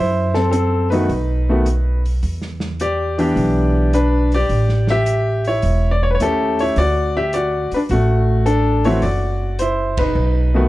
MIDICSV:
0, 0, Header, 1, 5, 480
1, 0, Start_track
1, 0, Key_signature, 2, "major"
1, 0, Tempo, 566572
1, 1891, Time_signature, 4, 2, 24, 8
1, 9052, End_track
2, 0, Start_track
2, 0, Title_t, "Grand piano"
2, 0, Program_c, 0, 0
2, 0, Note_on_c, 0, 64, 62
2, 0, Note_on_c, 0, 72, 78
2, 281, Note_off_c, 0, 64, 0
2, 292, Note_on_c, 0, 69, 74
2, 306, Note_off_c, 0, 72, 0
2, 310, Note_on_c, 0, 60, 54
2, 423, Note_off_c, 0, 69, 0
2, 436, Note_on_c, 0, 69, 70
2, 437, Note_off_c, 0, 60, 0
2, 450, Note_on_c, 0, 60, 58
2, 749, Note_off_c, 0, 69, 0
2, 756, Note_off_c, 0, 60, 0
2, 764, Note_on_c, 0, 71, 69
2, 778, Note_on_c, 0, 63, 50
2, 782, Note_on_c, 0, 51, 59
2, 785, Note_on_c, 0, 57, 54
2, 792, Note_on_c, 0, 59, 51
2, 795, Note_on_c, 0, 66, 67
2, 917, Note_off_c, 0, 51, 0
2, 918, Note_off_c, 0, 57, 0
2, 922, Note_off_c, 0, 59, 0
2, 923, Note_off_c, 0, 66, 0
2, 1263, Note_on_c, 0, 51, 52
2, 1268, Note_on_c, 0, 57, 55
2, 1274, Note_on_c, 0, 59, 53
2, 1280, Note_on_c, 0, 66, 57
2, 1397, Note_off_c, 0, 51, 0
2, 1400, Note_off_c, 0, 57, 0
2, 1403, Note_off_c, 0, 59, 0
2, 1406, Note_off_c, 0, 66, 0
2, 1698, Note_off_c, 0, 71, 0
2, 1705, Note_off_c, 0, 63, 0
2, 2380, Note_on_c, 0, 67, 61
2, 2384, Note_on_c, 0, 74, 78
2, 2696, Note_on_c, 0, 52, 59
2, 2699, Note_off_c, 0, 67, 0
2, 2700, Note_on_c, 0, 59, 59
2, 2703, Note_on_c, 0, 62, 56
2, 2712, Note_on_c, 0, 67, 68
2, 3299, Note_off_c, 0, 52, 0
2, 3301, Note_off_c, 0, 59, 0
2, 3303, Note_off_c, 0, 62, 0
2, 3307, Note_off_c, 0, 67, 0
2, 3339, Note_on_c, 0, 62, 68
2, 3341, Note_on_c, 0, 71, 83
2, 3366, Note_off_c, 0, 74, 0
2, 3641, Note_off_c, 0, 62, 0
2, 3675, Note_off_c, 0, 71, 0
2, 3681, Note_on_c, 0, 74, 89
2, 3690, Note_on_c, 0, 67, 68
2, 4118, Note_off_c, 0, 74, 0
2, 4122, Note_off_c, 0, 67, 0
2, 4155, Note_on_c, 0, 76, 107
2, 4164, Note_on_c, 0, 67, 72
2, 4599, Note_off_c, 0, 67, 0
2, 4638, Note_on_c, 0, 73, 83
2, 4642, Note_off_c, 0, 76, 0
2, 4646, Note_on_c, 0, 64, 61
2, 4993, Note_off_c, 0, 64, 0
2, 5010, Note_on_c, 0, 74, 75
2, 5026, Note_off_c, 0, 73, 0
2, 5107, Note_off_c, 0, 74, 0
2, 5108, Note_on_c, 0, 73, 79
2, 5155, Note_off_c, 0, 73, 0
2, 5173, Note_on_c, 0, 71, 68
2, 5208, Note_on_c, 0, 73, 80
2, 5212, Note_off_c, 0, 71, 0
2, 5254, Note_off_c, 0, 73, 0
2, 5259, Note_on_c, 0, 64, 52
2, 5261, Note_on_c, 0, 57, 46
2, 5263, Note_on_c, 0, 61, 46
2, 5273, Note_on_c, 0, 69, 88
2, 5276, Note_on_c, 0, 67, 59
2, 5595, Note_on_c, 0, 73, 83
2, 5596, Note_off_c, 0, 64, 0
2, 5600, Note_off_c, 0, 69, 0
2, 5608, Note_on_c, 0, 64, 68
2, 5735, Note_off_c, 0, 57, 0
2, 5735, Note_off_c, 0, 64, 0
2, 5737, Note_off_c, 0, 61, 0
2, 5743, Note_off_c, 0, 67, 0
2, 5743, Note_off_c, 0, 73, 0
2, 5745, Note_on_c, 0, 74, 97
2, 5758, Note_on_c, 0, 66, 68
2, 6051, Note_off_c, 0, 66, 0
2, 6072, Note_on_c, 0, 76, 88
2, 6076, Note_off_c, 0, 74, 0
2, 6078, Note_on_c, 0, 67, 68
2, 6206, Note_off_c, 0, 76, 0
2, 6210, Note_off_c, 0, 67, 0
2, 6217, Note_on_c, 0, 74, 81
2, 6232, Note_on_c, 0, 66, 66
2, 6519, Note_off_c, 0, 74, 0
2, 6527, Note_off_c, 0, 66, 0
2, 6559, Note_on_c, 0, 71, 76
2, 6577, Note_on_c, 0, 62, 62
2, 6602, Note_off_c, 0, 71, 0
2, 6619, Note_off_c, 0, 62, 0
2, 6699, Note_on_c, 0, 66, 87
2, 6718, Note_on_c, 0, 57, 63
2, 7140, Note_off_c, 0, 66, 0
2, 7151, Note_off_c, 0, 57, 0
2, 7166, Note_on_c, 0, 69, 86
2, 7175, Note_on_c, 0, 62, 58
2, 7477, Note_off_c, 0, 62, 0
2, 7499, Note_on_c, 0, 73, 79
2, 7502, Note_on_c, 0, 52, 65
2, 7506, Note_off_c, 0, 69, 0
2, 7506, Note_on_c, 0, 57, 63
2, 7514, Note_on_c, 0, 64, 67
2, 7515, Note_on_c, 0, 60, 62
2, 7515, Note_on_c, 0, 66, 70
2, 7635, Note_off_c, 0, 52, 0
2, 7637, Note_off_c, 0, 57, 0
2, 7642, Note_off_c, 0, 60, 0
2, 7642, Note_off_c, 0, 66, 0
2, 7646, Note_off_c, 0, 64, 0
2, 7647, Note_on_c, 0, 74, 80
2, 7654, Note_off_c, 0, 73, 0
2, 7658, Note_on_c, 0, 66, 60
2, 8099, Note_off_c, 0, 66, 0
2, 8126, Note_on_c, 0, 72, 80
2, 8141, Note_off_c, 0, 74, 0
2, 8147, Note_on_c, 0, 64, 62
2, 8443, Note_off_c, 0, 64, 0
2, 8460, Note_on_c, 0, 71, 86
2, 8465, Note_off_c, 0, 72, 0
2, 8476, Note_on_c, 0, 63, 52
2, 8932, Note_on_c, 0, 51, 65
2, 8936, Note_on_c, 0, 57, 56
2, 8943, Note_on_c, 0, 59, 64
2, 8948, Note_on_c, 0, 66, 70
2, 9052, Note_off_c, 0, 51, 0
2, 9052, Note_off_c, 0, 57, 0
2, 9052, Note_off_c, 0, 59, 0
2, 9052, Note_off_c, 0, 63, 0
2, 9052, Note_off_c, 0, 66, 0
2, 9052, Note_off_c, 0, 71, 0
2, 9052, End_track
3, 0, Start_track
3, 0, Title_t, "Upright bass"
3, 0, Program_c, 1, 32
3, 0, Note_on_c, 1, 42, 72
3, 896, Note_off_c, 1, 42, 0
3, 927, Note_on_c, 1, 35, 74
3, 1856, Note_off_c, 1, 35, 0
3, 1888, Note_on_c, 1, 40, 73
3, 2816, Note_off_c, 1, 40, 0
3, 2845, Note_on_c, 1, 35, 78
3, 3774, Note_off_c, 1, 35, 0
3, 3807, Note_on_c, 1, 33, 70
3, 4735, Note_off_c, 1, 33, 0
3, 4769, Note_on_c, 1, 28, 80
3, 5216, Note_off_c, 1, 28, 0
3, 5251, Note_on_c, 1, 39, 70
3, 5697, Note_off_c, 1, 39, 0
3, 5731, Note_on_c, 1, 38, 75
3, 6505, Note_off_c, 1, 38, 0
3, 6690, Note_on_c, 1, 33, 81
3, 7614, Note_off_c, 1, 33, 0
3, 7647, Note_on_c, 1, 30, 65
3, 8572, Note_off_c, 1, 30, 0
3, 8600, Note_on_c, 1, 35, 78
3, 9052, Note_off_c, 1, 35, 0
3, 9052, End_track
4, 0, Start_track
4, 0, Title_t, "Muted upright bass strokes"
4, 6539, Note_on_c, 9, 29, 37
4, 6623, Note_off_c, 9, 29, 0
4, 9052, End_track
5, 0, Start_track
5, 0, Title_t, "Drums"
5, 290, Note_on_c, 9, 38, 34
5, 375, Note_off_c, 9, 38, 0
5, 446, Note_on_c, 9, 42, 45
5, 530, Note_off_c, 9, 42, 0
5, 776, Note_on_c, 9, 46, 38
5, 861, Note_off_c, 9, 46, 0
5, 927, Note_on_c, 9, 46, 35
5, 1012, Note_off_c, 9, 46, 0
5, 1406, Note_on_c, 9, 42, 40
5, 1491, Note_off_c, 9, 42, 0
5, 1741, Note_on_c, 9, 46, 39
5, 1826, Note_off_c, 9, 46, 0
5, 1886, Note_on_c, 9, 46, 42
5, 1971, Note_off_c, 9, 46, 0
5, 2046, Note_on_c, 9, 38, 27
5, 2131, Note_off_c, 9, 38, 0
5, 2205, Note_on_c, 9, 38, 41
5, 2289, Note_off_c, 9, 38, 0
5, 2369, Note_on_c, 9, 42, 45
5, 2454, Note_off_c, 9, 42, 0
5, 2699, Note_on_c, 9, 46, 38
5, 2784, Note_off_c, 9, 46, 0
5, 2855, Note_on_c, 9, 46, 39
5, 2939, Note_off_c, 9, 46, 0
5, 3332, Note_on_c, 9, 42, 43
5, 3417, Note_off_c, 9, 42, 0
5, 3658, Note_on_c, 9, 46, 40
5, 3743, Note_off_c, 9, 46, 0
5, 3806, Note_on_c, 9, 46, 41
5, 3891, Note_off_c, 9, 46, 0
5, 3971, Note_on_c, 9, 38, 26
5, 4056, Note_off_c, 9, 38, 0
5, 4129, Note_on_c, 9, 38, 39
5, 4214, Note_off_c, 9, 38, 0
5, 4288, Note_on_c, 9, 42, 44
5, 4373, Note_off_c, 9, 42, 0
5, 4613, Note_on_c, 9, 46, 37
5, 4698, Note_off_c, 9, 46, 0
5, 4764, Note_on_c, 9, 46, 43
5, 4849, Note_off_c, 9, 46, 0
5, 5253, Note_on_c, 9, 42, 43
5, 5338, Note_off_c, 9, 42, 0
5, 5583, Note_on_c, 9, 46, 41
5, 5668, Note_off_c, 9, 46, 0
5, 5727, Note_on_c, 9, 46, 45
5, 5812, Note_off_c, 9, 46, 0
5, 6209, Note_on_c, 9, 42, 47
5, 6293, Note_off_c, 9, 42, 0
5, 6536, Note_on_c, 9, 46, 39
5, 6620, Note_off_c, 9, 46, 0
5, 6685, Note_on_c, 9, 46, 37
5, 6769, Note_off_c, 9, 46, 0
5, 7169, Note_on_c, 9, 42, 40
5, 7254, Note_off_c, 9, 42, 0
5, 7493, Note_on_c, 9, 46, 37
5, 7577, Note_off_c, 9, 46, 0
5, 7640, Note_on_c, 9, 46, 41
5, 7725, Note_off_c, 9, 46, 0
5, 8123, Note_on_c, 9, 42, 50
5, 8208, Note_off_c, 9, 42, 0
5, 8450, Note_on_c, 9, 51, 71
5, 8451, Note_on_c, 9, 36, 78
5, 8535, Note_off_c, 9, 51, 0
5, 8536, Note_off_c, 9, 36, 0
5, 9052, End_track
0, 0, End_of_file